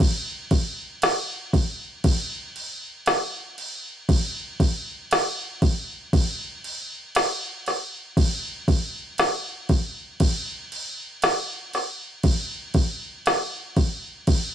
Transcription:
0.00 kick loud
0.00 crash medium
0.51 kick medium
0.51 crash medium
1.02 snare loud
1.02 crash loud
1.53 kick medium
1.53 crash medium
2.04 kick loud
2.04 crash medium
2.56 crash medium
3.06 snare loud
3.06 crash medium
3.58 crash medium
4.09 kick loud
4.09 crash medium
4.60 kick medium
4.60 crash medium
5.11 snare loud
5.11 crash loud
5.62 kick medium
5.62 crash medium
6.13 kick loud
6.13 crash medium
6.64 crash medium
7.15 snare loud
7.15 crash loud
7.66 snare soft
7.66 crash medium
8.17 kick loud
8.17 crash loud
8.68 kick loud
8.68 crash medium
9.18 snare loud
9.18 crash medium
9.69 kick medium
9.69 crash medium
10.20 kick loud
10.20 crash medium
10.72 crash medium
11.22 snare loud
11.22 crash medium
11.73 snare soft
11.73 crash medium
12.23 kick loud
12.23 crash medium
12.74 kick medium
12.74 crash medium
13.26 snare loud
13.26 crash medium
13.76 kick medium
13.76 crash medium
14.27 kick loud
14.27 crash medium

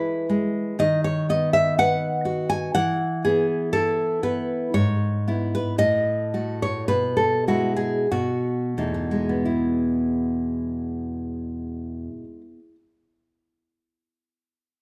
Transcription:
0.00 0.73 E3 medium
0.00 0.28 G#3 soft
0.00 0.79 E4 medium
0.00 0.26 B4 medium
0.29 0.78 G#3 soft
0.79 2.72 D#3 medium
0.79 1.03 D#5 loud
1.04 1.28 C#5 medium
1.29 2.76 B3 soft
1.29 1.53 D#5 medium
1.53 1.77 E5 medium
1.78 2.76 B4 medium
1.78 2.49 F#5 loud
2.25 2.75 F#4 medium
2.50 2.74 G#5 loud
2.75 4.69 E3 medium
2.75 3.22 F#5 loud
3.25 4.22 B3 soft
3.25 3.71 G#4 medium
3.73 4.73 E4 medium
3.73 4.20 A4 loud
4.23 4.73 B3 soft
4.23 4.71 B4 medium
4.74 5.76 G#2 medium
4.74 5.49 C#5 medium
5.28 5.75 B3 soft
5.28 5.76 E4 medium
5.55 5.78 B4 medium
5.78 6.86 A2 medium
5.78 6.58 D#5 loud
6.34 6.86 A3 soft
6.34 6.86 F#4 soft
6.62 6.88 C#5 medium
6.88 8.06 B2 medium
6.88 7.17 B4 medium
7.17 7.47 A4 medium
7.48 8.06 G#3 soft
7.48 8.06 E4 soft
7.48 7.76 F#4 medium
7.76 8.09 G#4 medium
8.11 8.93 B2 medium
8.11 9.41 F#4 medium
8.78 12.07 E2 soft
8.78 9.29 A3 soft
8.78 9.41 D#4 soft
8.94 12.24 B2 soft
9.11 12.41 G#3 soft
9.29 12.59 B3 soft
9.45 12.75 E4 soft

